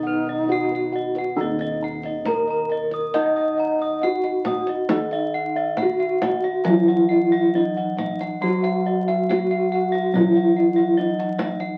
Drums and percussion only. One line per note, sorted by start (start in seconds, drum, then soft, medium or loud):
1.15 kendang slap soft
1.59 kendang slap soft
2.03 kendang slap soft
2.25 kendang high soft
2.25 kendang low soft
2.91 kendang slap soft
3.14 kendang low medium
4.24 kendang slap soft
4.45 kendang high soft
4.45 kendang low medium
4.67 kendang slap soft
4.89 kendang high medium
5.11 kendang slap soft
5.77 kendang high soft
5.77 kendang low soft
6.22 kendang high medium
6.22 kendang low medium
6.44 kendang slap soft
6.65 kendang low medium
7.98 kendang high soft
7.98 kendang low soft
8.21 kendang slap soft
8.64 kendang slap soft
9.08 kendang slap soft
9.31 kendang high medium
9.31 kendang low soft
9.95 kendang slap soft
10.15 kendang low medium
11.20 kendang slap soft
11.39 kendang high medium
11.39 kendang low medium
11.60 kendang slap soft